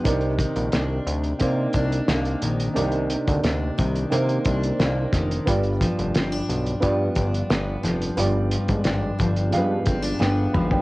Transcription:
<<
  \new Staff \with { instrumentName = "Upright piano" } { \time 4/4 \key c \minor \tempo 4 = 89 << { r1 | r1 | r1 | r2. g''8 b''16 g''16 | } \\ { <c' ees' bes' d''>4. r8 <c' ees' bes' d''>4. r8 | <c' d' ees' bes' d''>4. r8 <c' ees' bes' c''>4. r8 | <b f' g' d''>4. r8 <b f' g' d''>4. r8 | <b f' g' d''>4. r8 <aes b f' g' f''>4. r8 | } >> }
  \new Staff \with { instrumentName = "Steel-string acoustic guitar" } { \time 4/4 \key c \minor c8 ees8 d'4 bes8 d'8 bes8 ees8 | c4 d'8 ees8 bes8 d'8 bes8 ees8 | g,8 f8 c'16 d'16 f8 b8 d'8 b8 f8 | g,8 f8 d'8 f8 b8 c'16 d'16 b8 f8 | }
  \new Staff \with { instrumentName = "Analog synth bass" } { \clef bass \time 4/4 \key c \minor c,8. bes,,16 c,8 d,8 c8 c,8 c,8 bes,,8 | c,8. d,16 d,8 c,8 c8 c,8 c,8 f,,8 | g,,8. f,,16 g,,8 b,,8 g,8 g,,8 g,,8 f,,8 | g,,8. aes,,16 aes,,8 g,,8 g,8 g,,8 g,,8 aes,,8 | }
  \new DrumStaff \with { instrumentName = "Drums" } \drummode { \time 4/4 <hh bd>16 hh16 <hh bd>16 hh16 <hh sn>8 hh16 hh16 <hh bd>8 <hh bd>16 hh16 <hh sn>16 hh16 hh16 hh16 | hh16 hh16 hh16 <hh bd>16 <hh sn>8 <hh bd>16 hh16 hh16 hh16 <hh bd>16 hh16 <hh sn>8 <hh bd sn>16 hh16 | <hh bd>16 hh16 <hh bd>16 hh16 <hh sn>16 hh16 hh16 hh16 <hh bd>8 <hh bd>16 hh16 <hh sn>8 <hh sn>16 hh16 | hh8 hh16 <hh bd>16 <hh sn>8 <hh bd>16 hh16 hh8 <hh bd>16 hh16 sn8 toml16 tomfh16 | }
>>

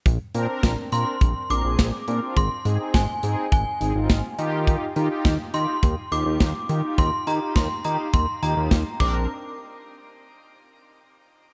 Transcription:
<<
  \new Staff \with { instrumentName = "Synth bell" } { \time 4/4 \key bes \mixolydian \tempo 4 = 104 r4. c'''4 d'''4. | c'''4 aes''4 aes''4. r8 | r4. c'''4 d'''4. | c'''8 bes''8 c'''8 bes''8 c'''8 bes''4 d'''8 |
r1 | }
  \new Staff \with { instrumentName = "Analog polysynth" } { \time 4/4 \key bes \mixolydian r8 <c' d' bes'>16 <c' d' bes'>8 r16 <c' d' bes'>8 r8 <c' d' bes'>16 <c' d' aes'>8 r16 <c' d' bes'>16 <c' d' f'>16 | r8 <c' ees' aes'>16 <c' ees' aes'>8 r16 <c' ees' aes'>8 r8 <c' ees' aes'>16 <c' ees' f'>8 r16 <ees' f' g'>8~ | <ees' f' g'>16 r16 <ees' f' g'>16 <ees' f' g'>8 r16 <ees' f' g'>8 r8 <ees' f' g'>16 <ees' f' g'>8 r16 <ees' f' g'>16 <ees' f' g'>16~ | <ees' f' g'>16 r16 <ees' f' g'>16 <ees' f' g'>8 r16 <ees' f' g'>8 r8 <ees' f' g'>16 <ees' f' g'>8 r16 <c' d' bes'>8 |
r1 | }
  \new Staff \with { instrumentName = "Analog synth bass" } { \clef bass \time 4/4 \key bes \mixolydian bes,,16 r16 bes,16 r16 bes,,16 r16 bes,16 r16 bes,,16 r16 bes,,16 bes,,16 bes,,16 r16 bes,16 r16 | aes,,16 r16 aes,16 r16 aes,,16 r16 aes,16 r16 aes,,16 r16 aes,,16 aes,,16 aes,,16 r16 ees8~ | ees16 r16 ees16 r16 ees,16 r16 ees16 r16 ees,16 r16 ees,16 ees,16 ees,16 r16 ees16 r16 | ees,16 r16 ees16 r16 ees,16 r16 ees16 r16 ees,16 r16 ees,16 ees,16 ees,16 r16 bes,,8 |
r1 | }
  \new DrumStaff \with { instrumentName = "Drums" } \drummode { \time 4/4 <hh bd>8 hh8 <hh bd sn>8 hh8 <hh bd>8 hh8 <hh bd sn>8 hh8 | <hh bd>8 hh8 <hh bd sn>8 hh8 <hh bd>8 hh8 <hh bd sn>8 hh8 | <hh bd>8 hh8 <hh bd sn>8 hh8 <hh bd>8 hh8 <hh bd sn>8 hh8 | <hh bd>8 hh8 <hh bd sn>8 hh8 <hh bd>8 hh8 <hh bd sn>8 <cymc bd>8 |
r4 r4 r4 r4 | }
>>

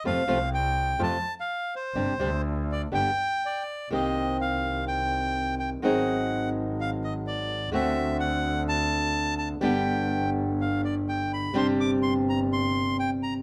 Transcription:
<<
  \new Staff \with { instrumentName = "Bandoneon" } { \time 4/4 \key c \minor \tempo 4 = 125 f''4 g''4 a''8. f''8. c''8~ | c''4 r8 d''8 g''4 d''4 | ees''4 f''4 g''4. g''8 | ges''4. r8 f''8 ees''8 d''4 |
e''4 fis''4 a''4. a''8 | g''4. r8 f''8 d''8 g''8 b''8 | c'''8 d'''8 c'''8 bes''8 c'''4 g''8 bes''8 | }
  \new Staff \with { instrumentName = "Nylon-string guitar" } { \time 4/4 \key c \minor <c f a c' f'>8 <c f a c' f'>8 r4 <c f a c' f'>8 r4. | <c g c' d' g'>8 <c g c' d' g'>8 r4 <d g b d' g'>8 r4. | <c ees bes c' g'>1 | <ees ges c' ees' aes'>1 |
<d a c' fis'>1 | <d g b d' g'>1 | <c g c' d' g'>1 | }
  \new Staff \with { instrumentName = "Double bass" } { \clef bass \time 4/4 \key c \minor f,8 c,4. f,8 r4. | g,,8 d,4. g,,8 r4. | c,1 | aes,,1 |
d,1 | g,,1 | g,,1 | }
>>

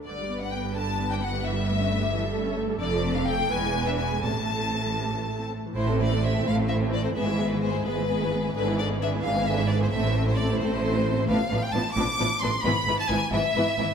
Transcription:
<<
  \new Staff \with { instrumentName = "Violin section" } { \time 6/8 \key a \dorian \tempo 4. = 87 d''8. fis''16 g''8 a''8. g''16 fis''8 | e''2~ e''8 r8 | \key a \minor d''8. f''16 g''8 gis''8. e''16 gis''8 | a''2~ a''8 r8 |
c''8 d''8 e''8 f''8 e''8 d''16 c''16 | e''8. b'16 c''8 b'4. | b'8 d''8 e''8 f''8 e''8 d''16 c''16 | e''8. c''16 d''8 c''4. |
f''8. g''16 a''8 d'''4 c'''8 | b''8. a''16 gis''8 e''4. | }
  \new Staff \with { instrumentName = "Violin section" } { \time 6/8 \key a \dorian d''8. fis''16 g''8 a''8. g''16 fis''8 | e''2~ e''8 r8 | \key a \minor d''8. f''16 g''8 gis''8. e''16 gis''8 | a''2~ a''8 r8 |
<e' c''>16 <c' a'>16 <e' c''>16 <c' a'>16 <e' c''>16 <c' a'>16 <e' c''>16 <c' a'>16 <e' c''>16 <c' a'>16 <e' c''>16 <c' a'>16 | <gis' b'>16 <e' gis'>16 <gis' b'>16 <e' gis'>16 <gis' b'>16 <e' gis'>16 <gis' b'>16 <e' gis'>16 <gis' b'>16 <e' gis'>16 <gis' b'>16 <e' gis'>16 | <gis' b'>16 <e' gis'>16 <gis' b'>16 <e' gis'>16 <gis' b'>16 <e' gis'>16 <gis' b'>16 <e' gis'>16 <gis' b'>16 <e' gis'>16 <gis' b'>16 <e' gis'>16 | <c' a'>16 <e' c''>16 <c' a'>16 <e' c''>16 <c' a'>16 <e' c''>16 <c' a'>16 <e' c''>16 <c' a'>16 <e' c''>16 <c' a'>16 <e' c''>16 |
<d' b'>8 <d' b'>8 <d' b'>8 <d' b'>8 <d' b'>8 <d' b'>8 | <e' b'>8 <e' b'>8 <e' b'>8 <e' b'>8 <e' b'>8 <e' b'>8 | }
  \new Staff \with { instrumentName = "Viola section" } { \time 6/8 \key a \dorian << { b'2.~ | b'4. a'4.~ | \key a \minor a'4. b'4. | a'2~ a'8 r8 |
a16 c'16 a16 c'16 a16 c'16 a16 c'16 a16 c'16 a16 c'16 | b16 gis16 b16 gis16 b16 gis16 b16 gis16 b16 gis16 b16 gis16 | d'16 b16 d'16 b16 d'16 b16 d'16 b16 d'16 b16 d'16 b16 | c'16 a16 c'16 a16 c'16 a16 c'16 a16 c'16 a16 c'16 a16 |
b8 b8 b8 b8 b8 b8 | b8 b8 b8 b8 b8 b8 | } \\ { d16 g16 b16 d'16 b16 g16 d16 g16 b16 d'16 b16 g16 | e16 g16 a16 cis'16 a16 g16 e16 g16 a16 cis'16 a16 g16 | d16 f16 a16 d'16 a16 f16 e16 gis16 b16 d'16 b16 gis16 | c16 e16 a16 c'16 a16 e16 c16 e16 a16 c'16 a16 e16 |
a16 e16 a16 e16 a16 e16 a16 e16 a16 e16 a16 e16 | gis16 e16 gis16 e16 gis16 e16 gis16 e16 gis16 e16 gis16 e16 | d16 e16 d16 e16 d16 e16 d16 e16 d16 e16 d16 e16 | a16 e16 a16 e16 a16 e16 a16 e16 a16 e16 a16 e16 |
f8 f8 f8 f8 f8 f8 | e8 e8 e8 e8 e8 e8 | } >> }
  \new Staff \with { instrumentName = "Cello section" } { \clef bass \time 6/8 \key a \dorian g,2.~ | g,2. | \key a \minor f,4. e,4. | a,2~ a,8 r8 |
a,4. a,4. | gis,4. gis,4. | gis,4. gis,4. | a,4. a,4. |
a,8 a,8 a,8 a,8 a,8 a,8 | gis,8 gis,8 gis,8 gis,8 gis,8 gis,8 | }
  \new Staff \with { instrumentName = "Double bass section" } { \clef bass \time 6/8 \key a \dorian g,,2.~ | g,,2. | \key a \minor f,,4. e,,4. | a,,2~ a,,8 r8 |
a,,4. a,,4. | gis,,4. gis,,4. | gis,,4. gis,,4. | a,,4. a,,4. |
a,,8 a,,8 a,,8 a,,8 a,,8 a,,8 | gis,,8 gis,,8 gis,,8 gis,,8 gis,,8 gis,,8 | }
>>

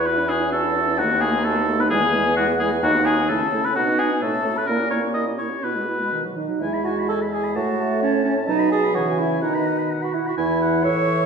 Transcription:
<<
  \new Staff \with { instrumentName = "Flute" } { \time 2/4 \key e \major \tempo 4 = 129 b''8 gis''8 a''4 | fis''8 gis''8 a''8. b''16 | gis''4 fis''8 gis''8 | fis''8 gis''8 a''8. b''16 |
fis''8 gis''8 a''8. b''16 | ais''8 cis'''8 dis'''8 cis'''8 | b''4. dis''8 | e''8 fis''8 a''8 gis''8 |
fis''4 cis''8 cis''8 | dis''8 gis''8 fis''8 e''8 | dis''4 r16 fis''16 e''16 fis''16 | e''4 cis'''4 | }
  \new Staff \with { instrumentName = "Oboe" } { \time 2/4 \key e \major b'8 gis'8 a'4 | fis'8 gis'8 a'8. b'16 | gis'4 fis'8 gis'8 | fis'8 gis'8 a'8. b'16 |
fis'8 gis'8 a'8. b'16 | ais'8 cis''8 dis''8 cis''8 | b'4. r8 | gis''16 b''16 gis''16 b''16 gis''16 b''16 gis''16 b''16 |
a''16 a''16 a''16 a''16 a''16 a''16 a''16 a''16 | a''16 b''16 a''16 b''16 gis''16 gis''16 gis''16 gis''16 | fis''16 b''16 fis''16 b''16 fis''16 b''16 fis''16 b''16 | gis''8 fis''8 e''4 | }
  \new Staff \with { instrumentName = "Clarinet" } { \time 2/4 \key e \major fis'16 e'16 fis'16 e'16 fis'16 e'16 fis'16 e'16 | fis'16 dis'16 fis'16 dis'16 fis'16 dis'16 fis'16 dis'16 | e'16 gis'16 e'16 gis'16 e'16 gis'16 e'16 gis'16 | fis'16 dis'16 fis'16 dis'16 e'16 a'16 e'16 a'16 |
dis'16 b16 dis'16 b16 fis'16 a'16 fis'16 a'16 | e'16 g'16 e'16 g'16 e'16 g'16 e'16 g'16 | e'16 gis'16 e'16 gis'16 dis'16 fis'16 dis'8 | e'8 fis'8 a'8 gis'8 |
fis'4 cis'8 cis'8 | dis'8 gis'8 fis'8 e'8 | dis'4 r16 fis'16 e'16 fis'16 | e'4 cis''4 | }
  \new Staff \with { instrumentName = "French horn" } { \time 2/4 \key e \major e'16 cis'16 e'16 cis'16 e'16 cis'16 e'16 cis'16 | a16 b16 a16 b16 a16 b16 a16 b16 | gis16 b16 gis16 b16 gis16 b16 gis16 b16 | dis'16 b16 dis'16 b16 a16 cis'16 a16 cis'16 |
b16 dis'16 b16 dis'16 a16 cis'16 a16 cis'16 | ais16 cis'16 ais16 cis'16 ais16 cis'16 ais16 cis'16 | b16 gis16 b16 gis16 dis16 fis16 dis16 fis16 | gis2 |
a2 | fis4 e4 | dis4. r8 | e2 | }
  \new Staff \with { instrumentName = "Bassoon" } { \clef bass \time 2/4 \key e \major e,2 | dis,2 | e,2 | dis,4 cis4 |
b,4 a,4 | ais,4. r8 | b,4. r8 | e,2 |
a,2 | b,4 cis4 | b,4. r8 | e,4 a,4 | }
>>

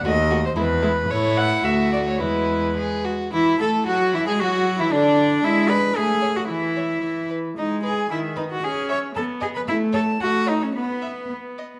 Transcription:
<<
  \new Staff \with { instrumentName = "Violin" } { \time 2/4 \key e \mixolydian \tempo 4 = 112 dis''8. c''16 b'4 | cis''8 fis''8 e''8 d''16 cis''16 | b'4. r8 | e''8 a''8 fis''8 e''16 gis''16 |
fis''8. e''16 d''4 | e''8 b''8 gis''8. fis''16 | e''4. r8 | \key fis \dorian dis''8 gis''8 e''8 dis''16 fis''16 |
gis''8 cis'''8 a''8 gis''16 b''16 | e''8 a''8 fis''8 dis''16 cis''16 | b'4 r4 | }
  \new Staff \with { instrumentName = "Violin" } { \time 2/4 \key e \mixolydian fis'8 fis'8 e'8 e'8 | e'4 fis'4 | e'4 gis'8 fis'8 | e'8 a'8 fis'8 e'16 gis'16 |
fis'8. e'16 d'4 | r8 d''8 r8 cis''8 | r8 cis''8 r8 b'8 | \key fis \dorian r8 b'8 r8 b'8 |
r8 e''8 r8 dis''8 | r8 cis''8 r8 cis''8 | r8 e''8 r8 dis''8 | }
  \new Staff \with { instrumentName = "Cello" } { \time 2/4 \key e \mixolydian dis,4 e,4 | a,4 d,4 | e,4. r8 | e'8 a'8 fis'8 e'16 gis'16 |
fis'8. e'16 d'4 | e'8 b'8 gis'8. fis'16 | e'4. r8 | \key fis \dorian dis'8 gis'8 e'8 dis'16 fis'16 |
gis'8 cis''8 a'8 gis'16 b'16 | e'8 a'8 fis'8 dis'16 cis'16 | b4 r4 | }
  \new Staff \with { instrumentName = "Viola" } { \clef bass \time 2/4 \key e \mixolydian a8 a8 gis8 gis8 | a4 a4 | gis4. r8 | e8 a8 fis8 e16 gis16 |
fis8. e16 d4 | gis4 a4 | e4 e4 | \key fis \dorian gis4 dis4 |
cis'4 b4 | a4 a4 | b4 b4 | }
>>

